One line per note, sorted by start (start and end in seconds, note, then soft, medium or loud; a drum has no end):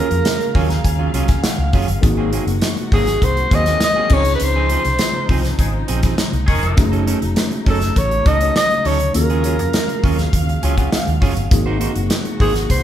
0.00 2.01 C#3 medium
0.00 1.99 F#3 medium
0.00 4.07 G#3 medium
0.00 1.99 A#3 medium
0.00 1.99 C#4 medium
0.00 2.00 F4 medium
0.00 2.00 F#4 medium
0.00 2.00 G#4 medium
0.00 0.81 A#4 medium
0.00 2.01 F5 medium
0.11 0.22 F2 medium
0.11 muted clean electric guitar stroke medium
0.11 closed hi-hat soft
0.25 snare loud
0.25 closed hi-hat loud
0.41 muted clean electric guitar stroke soft
0.41 closed hi-hat soft
0.55 0.78 D#2 loud
0.55 0.69 F#3 medium
0.55 0.70 C#4 medium
0.55 0.69 F4 medium
0.55 0.69 G#4 loud
0.55 0.69 G#5 medium
0.55 kick medium
0.55 open hi-hat medium
0.70 0.84 A#5 medium
0.70 muted clean electric guitar stroke soft
0.70 snare soft
0.70 closed hi-hat medium
0.85 1.08 D#2 loud
0.85 0.99 G#5 medium
0.85 muted clean electric guitar stroke soft
0.85 kick medium
0.85 closed hi-hat medium
0.99 1.11 F#3 medium
0.99 1.11 C#4 medium
0.99 1.11 F4 medium
0.99 1.10 G#4 medium
0.99 1.27 F5 medium
1.14 1.37 C2 medium
1.14 1.28 F#3 medium
1.14 1.29 C#4 medium
1.14 1.28 F4 medium
1.14 1.27 G#4 medium
1.14 closed hi-hat medium
1.28 1.43 G#5 medium
1.28 muted clean electric guitar stroke soft
1.28 kick medium
1.28 snare soft
1.28 closed hi-hat medium
1.43 1.57 F#5 medium
1.43 muted clean electric guitar stroke soft
1.43 snare loud
1.43 closed hi-hat loud
1.58 1.70 C#2 medium
1.58 2.00 F5 medium
1.58 muted clean electric guitar stroke medium
1.73 1.85 F#1 medium
1.73 1.88 F#3 medium
1.73 1.88 C#4 medium
1.73 1.88 F4 medium
1.73 1.88 G#4 medium
1.73 kick medium
1.73 open hi-hat medium
1.88 2.00 G1 medium
1.88 muted clean electric guitar stroke soft
1.88 closed hi-hat medium
2.01 2.38 G#1 loud
2.01 4.09 C3 medium
2.01 4.06 A#3 medium
2.01 4.09 A#3 medium
2.01 4.06 C4 medium
2.01 4.06 D#4 medium
2.01 4.06 F#4 medium
2.01 4.09 F#4 medium
2.01 4.07 G#4 medium
2.01 muted clean electric guitar stroke soft
2.01 kick loud
2.01 closed hi-hat loud
2.17 2.31 F#3 medium
2.17 2.32 A#3 medium
2.17 2.32 C4 medium
2.17 2.32 G#4 medium
2.32 2.44 F#3 medium
2.32 2.44 A#3 medium
2.32 2.44 C4 medium
2.32 2.45 G#4 medium
2.32 closed hi-hat medium
2.47 2.59 F#1 medium
2.47 muted clean electric guitar stroke soft
2.47 closed hi-hat soft
2.62 snare loud
2.62 closed hi-hat loud
2.77 muted clean electric guitar stroke soft
2.77 closed hi-hat soft
2.92 3.15 G#1 medium
2.92 3.07 F#3 medium
2.92 3.07 A#3 medium
2.92 3.07 C4 medium
2.92 3.25 G#4 medium
2.92 3.07 G#4 medium
2.92 kick loud
2.92 open hi-hat medium
3.07 muted clean electric guitar stroke medium
3.07 snare soft
3.07 closed hi-hat medium
3.22 3.45 C2 loud
3.22 3.56 C5 loud
3.22 muted clean electric guitar stroke soft
3.22 kick medium
3.22 closed hi-hat medium
3.37 muted clean electric guitar stroke soft
3.37 closed hi-hat soft
3.51 3.75 D#2 medium
3.51 3.66 F#3 medium
3.51 3.66 A#3 medium
3.51 3.67 C4 medium
3.51 3.66 G#4 medium
3.51 3.83 D#5 loud
3.51 kick loud
3.51 closed hi-hat medium
3.66 3.79 F#3 medium
3.66 3.78 A#3 medium
3.66 3.78 C4 medium
3.66 3.78 G#4 medium
3.66 snare soft
3.66 closed hi-hat medium
3.81 4.15 D#5 loud
3.81 muted clean electric guitar stroke soft
3.81 snare loud
3.81 closed hi-hat loud
3.96 4.11 F#3 medium
3.96 4.11 A#3 medium
3.96 4.11 C4 medium
3.96 4.10 G#4 medium
4.09 4.34 C#2 medium
4.09 6.75 C#3 medium
4.09 6.75 F3 medium
4.09 4.22 F3 medium
4.09 6.43 C4 medium
4.09 4.22 C4 medium
4.09 6.43 C#4 medium
4.09 6.44 D#4 medium
4.09 9.11 D#4 medium
4.09 4.23 D#4 medium
4.09 6.44 F4 medium
4.09 6.44 G#4 medium
4.09 4.23 G#4 medium
4.09 6.75 C5 medium
4.09 4.34 C#5 loud
4.09 kick loud
4.09 crash medium
4.25 closed hi-hat medium
4.35 4.45 B4 medium
4.40 4.75 C#2 loud
4.40 muted clean electric guitar stroke soft
4.40 closed hi-hat loud
4.44 5.61 C5 medium
4.56 4.70 F3 medium
4.56 4.70 C4 medium
4.56 4.70 D#4 medium
4.56 4.70 G#4 medium
4.70 4.82 F3 medium
4.70 4.82 C4 medium
4.70 4.82 D#4 medium
4.70 4.82 G#4 medium
4.70 closed hi-hat medium
4.85 4.97 C2 medium
4.85 closed hi-hat soft
4.99 snare loud
4.99 closed hi-hat loud
5.15 muted clean electric guitar stroke soft
5.29 5.52 C2 medium
5.29 5.44 F3 medium
5.29 5.44 C4 medium
5.29 5.43 D#4 medium
5.29 5.43 G#4 medium
5.29 kick loud
5.29 open hi-hat medium
5.44 muted clean electric guitar stroke soft
5.44 snare soft
5.44 closed hi-hat medium
5.59 5.82 G#1 loud
5.59 5.71 F3 medium
5.59 5.72 G#3 medium
5.59 5.71 D#4 medium
5.59 5.72 G#4 medium
5.59 muted clean electric guitar stroke soft
5.59 kick medium
5.59 closed hi-hat medium
5.74 muted clean electric guitar stroke soft
5.88 6.12 A#1 medium
5.88 6.03 F3 medium
5.88 6.03 C4 medium
5.88 6.02 D#4 medium
5.88 6.02 G#4 medium
5.88 closed hi-hat medium
6.03 6.15 F3 medium
6.03 6.15 C4 medium
6.03 6.15 D#4 medium
6.03 6.14 G#4 medium
6.03 kick medium
6.03 snare soft
6.03 closed hi-hat medium
6.18 muted clean electric guitar stroke soft
6.18 snare loud
6.18 closed hi-hat loud
6.32 6.45 C2 medium
6.32 muted clean electric guitar stroke soft
6.32 closed hi-hat soft
6.47 6.60 E1 medium
6.47 6.85 D#3 loud
6.47 6.85 G#3 loud
6.47 6.85 C#4 loud
6.47 6.85 G#4 loud
6.47 kick loud
6.47 open hi-hat medium
6.63 6.74 F1 medium
6.63 muted clean electric guitar stroke soft
6.63 closed hi-hat medium
6.77 7.12 F#1 loud
6.77 11.48 C#3 medium
6.77 9.13 F#3 medium
6.77 9.10 A3 medium
6.77 9.13 A3 medium
6.77 9.10 C#4 medium
6.77 9.11 D#4 medium
6.77 9.11 F#4 medium
6.77 9.11 G#4 medium
6.77 muted clean electric guitar stroke soft
6.77 kick loud
6.77 closed hi-hat medium
6.92 7.05 F#3 medium
6.92 7.06 C#4 medium
6.92 7.06 D#4 medium
6.92 7.06 A4 medium
6.92 closed hi-hat soft
7.07 7.18 F#3 medium
7.07 7.18 C#4 medium
7.07 7.18 D#4 medium
7.07 7.19 A4 medium
7.07 closed hi-hat medium
7.22 7.34 F1 medium
7.22 muted clean electric guitar stroke soft
7.22 closed hi-hat soft
7.36 snare loud
7.36 closed hi-hat medium
7.51 muted clean electric guitar stroke medium
7.51 closed hi-hat soft
7.66 7.90 F#1 medium
7.66 7.81 F#3 medium
7.66 7.81 C#4 medium
7.66 7.80 D#4 medium
7.66 7.80 A4 medium
7.66 8.00 A4 medium
7.66 kick medium
7.66 open hi-hat medium
7.81 muted clean electric guitar stroke soft
7.81 snare soft
7.81 closed hi-hat medium
7.96 8.19 A1 loud
7.96 8.29 C#5 loud
7.96 muted clean electric guitar stroke soft
7.96 kick medium
7.96 closed hi-hat medium
8.11 muted clean electric guitar stroke soft
8.11 closed hi-hat soft
8.26 8.49 C#2 medium
8.26 8.40 F#3 medium
8.26 8.40 C#4 medium
8.26 8.40 D#4 medium
8.26 8.40 A4 medium
8.26 8.56 D#5 loud
8.26 kick loud
8.26 closed hi-hat medium
8.41 8.52 F#3 medium
8.41 8.52 C#4 medium
8.41 8.52 D#4 medium
8.41 8.52 A4 medium
8.41 closed hi-hat medium
8.56 8.88 D#5 loud
8.56 muted clean electric guitar stroke soft
8.56 snare loud
8.56 closed hi-hat medium
8.70 muted clean electric guitar stroke soft
8.70 closed hi-hat soft
8.85 9.08 D2 medium
8.85 8.99 F#3 medium
8.85 8.99 C#4 medium
8.85 8.99 D#4 loud
8.85 8.99 A4 loud
8.85 9.15 C#5 loud
8.85 open hi-hat medium
9.00 muted clean electric guitar stroke soft
9.00 closed hi-hat medium
9.14 9.59 D#2 loud
9.14 11.50 F#3 medium
9.14 11.49 G#3 medium
9.14 11.47 A#3 medium
9.14 11.48 C#4 medium
9.14 11.48 F4 medium
9.14 11.48 F#4 medium
9.14 11.48 G#4 medium
9.14 10.29 A#4 medium
9.14 11.49 F5 medium
9.14 muted clean electric guitar stroke soft
9.14 closed hi-hat loud
9.30 9.44 F#3 medium
9.30 9.44 C#4 medium
9.30 9.44 F4 medium
9.30 9.44 G#4 medium
9.30 closed hi-hat soft
9.44 9.56 F#3 medium
9.44 9.56 C#4 medium
9.44 9.56 F4 medium
9.44 9.56 G#4 medium
9.44 closed hi-hat medium
9.59 9.71 F2 medium
9.59 muted clean electric guitar stroke medium
9.59 closed hi-hat soft
9.73 snare loud
9.73 closed hi-hat loud
9.89 muted clean electric guitar stroke soft
9.89 closed hi-hat soft
10.04 10.27 D#2 medium
10.04 10.18 F#3 medium
10.04 10.18 C#4 medium
10.04 10.18 F4 medium
10.04 10.18 G#4 medium
10.04 kick loud
10.04 open hi-hat medium
10.19 muted clean electric guitar stroke soft
10.19 snare soft
10.19 closed hi-hat medium
10.33 10.56 D#2 medium
10.33 muted clean electric guitar stroke soft
10.33 kick medium
10.33 closed hi-hat medium
10.49 muted clean electric guitar stroke medium
10.49 closed hi-hat soft
10.63 10.86 C#2 medium
10.63 10.77 F#3 medium
10.63 10.77 C#4 medium
10.63 10.77 F4 medium
10.63 10.76 G#4 medium
10.63 10.77 G#5 medium
10.63 closed hi-hat medium
10.78 10.89 F#3 medium
10.78 10.89 C#4 medium
10.78 10.89 F4 medium
10.78 10.89 G#4 medium
10.78 10.92 F#5 medium
10.78 kick medium
10.78 closed hi-hat medium
10.92 11.48 F5 medium
10.92 muted clean electric guitar stroke soft
10.92 snare loud
10.92 closed hi-hat loud
11.07 11.19 D#2 medium
11.07 muted clean electric guitar stroke medium
11.07 closed hi-hat soft
11.21 11.33 F#1 medium
11.21 11.36 F#3 medium
11.21 11.36 C#4 medium
11.21 11.35 F4 loud
11.21 11.35 G#4 loud
11.21 kick medium
11.21 open hi-hat medium
11.36 11.48 G1 medium
11.36 muted clean electric guitar stroke soft
11.36 closed hi-hat medium
11.51 11.86 G#1 loud
11.51 12.83 C3 medium
11.51 12.83 G#3 medium
11.51 12.83 A#3 medium
11.51 12.83 C4 medium
11.51 12.83 D#4 medium
11.51 12.83 F#4 medium
11.51 12.83 G#4 medium
11.51 muted clean electric guitar stroke soft
11.51 kick loud
11.51 closed hi-hat loud
11.66 11.78 A#3 medium
11.66 11.79 D#4 medium
11.66 11.79 F#4 medium
11.66 11.80 C5 medium
11.80 11.92 A#3 medium
11.80 11.92 D#4 medium
11.80 11.92 F#4 medium
11.80 11.92 C5 medium
11.80 closed hi-hat medium
11.95 12.07 F#1 loud
11.95 muted clean electric guitar stroke medium
11.95 closed hi-hat soft
12.10 snare loud
12.10 closed hi-hat loud
12.25 muted clean electric guitar stroke soft
12.25 closed hi-hat soft
12.40 12.63 G#1 medium
12.40 12.54 A#3 medium
12.40 12.55 D#4 medium
12.40 12.54 F#4 medium
12.40 12.54 G#4 medium
12.40 12.53 C5 medium
12.40 kick loud
12.40 open hi-hat medium
12.55 muted clean electric guitar stroke medium
12.55 snare soft
12.55 closed hi-hat medium
12.69 12.83 C2 loud
12.69 12.83 C5 loud
12.69 muted clean electric guitar stroke soft
12.69 kick medium
12.69 closed hi-hat medium